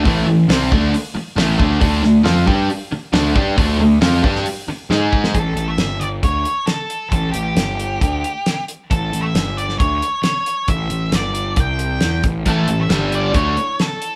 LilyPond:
<<
  \new Staff \with { instrumentName = "Lead electric guitar" } { \time 4/4 \key d \major \tempo 4 = 135 r1 | r1 | r1 | a'8. e''8. d''8 cis''4 a'4 |
a'8 g'2. r8 | a'8. e''8. d''8 cis''4 cis''4 | e''4 d''4 g''4. r8 | a'8. e''8. d''8 cis''4 a'4 | }
  \new Staff \with { instrumentName = "Steel-string acoustic guitar" } { \time 4/4 \key d \major r1 | r1 | r1 | r1 |
r1 | r1 | r1 | <a, a cis' e' a'>4 <g d' g' d''>8 <d' g' d''>8 <a e' a' cis''>8 <e' a' cis''>8 <a e' a' cis''>4 | }
  \new Staff \with { instrumentName = "Overdriven electric guitar" } { \time 4/4 \key d \major <a, e a>8 <a, e>8 <c g c'>8 <d a d'>8 r4 <a, e a>8 <d a d'>8 | <d a d'>8 <d a>8 <f c' f'>8 <g d' g'>8 r4 <d a d'>8 <g d' g'>8 | <d a d'>8 <d a>8 <f c' f'>8 <g d' g'>8 r4 <gis dis' gis'>4 | r1 |
r1 | r1 | r1 | <a, e a>8 <a, e>8 <g, d g>4 <d a d'>8 r4. | }
  \new Staff \with { instrumentName = "Overdriven electric guitar" } { \time 4/4 \key d \major <a, e a>8 <a, e>8 <c g c'>8 <d a d'>8 r4 <a, e a>8 <d a d'>8 | <d a d'>8 <d a>8 <f c' f'>8 <g d' g'>8 r4 <d a d'>8 <g d' g'>8 | <d a d'>8 <d a>8 <f c' f'>8 <g d' g'>8 r4 <gis dis' gis'>4 | r1 |
r1 | r1 | r1 | <a, e a>8 <a, e>8 <g, d g>4 <d a d'>8 r4. | }
  \new Staff \with { instrumentName = "Picked electric bass" } { \clef bass \time 4/4 \key d \major a,,8 a,,8 c,8 d,8 r4 a,,8 d,8 | d,8 d,8 f,8 g,8 r4 d,8 g,8 | d,8 d,8 f,8 g,8 r4 gis,4 | a,,8 a,,8 g,,4 d,8 r4. |
a,,8 a,,8 g,,4 d,8 r4. | a,,8 a,,8 g,,4 d,8 r4. | a,,8 a,,8 g,,4 c,4 e,8 a,,8 | a,,8 a,,8 g,,4 d,8 r4. | }
  \new DrumStaff \with { instrumentName = "Drums" } \drummode { \time 4/4 <hho bd>4 <hho sn>8 bd8 hho4 <hho sn>8 bd8 | <hho bd>8 sn8 <hho sn>8 bd8 hho4 <hho sn>8 bd8 | <hho bd>4 <hho sn>8 bd16 sn16 hho4 sn8 bd16 sn16 | <hh bd>8 hh8 <hh sn>8 hh8 <hh bd>8 hh8 <hh sn>8 hh8 |
<hh bd>8 hh8 <hh sn>8 hh8 <hh bd>8 hh8 <hh sn>8 hh8 | <hh bd>8 hh8 <hh sn>8 hh16 sn16 <hh bd>8 hh8 <hh sn>8 hh8 | <hh bd>8 hh8 <hh sn>8 hh8 <hh bd>8 hh8 <hh sn>8 <hh bd>8 | <hh bd>8 hh8 <hh sn>8 hh8 <hh bd>8 hh8 <hh sn>8 hh8 | }
>>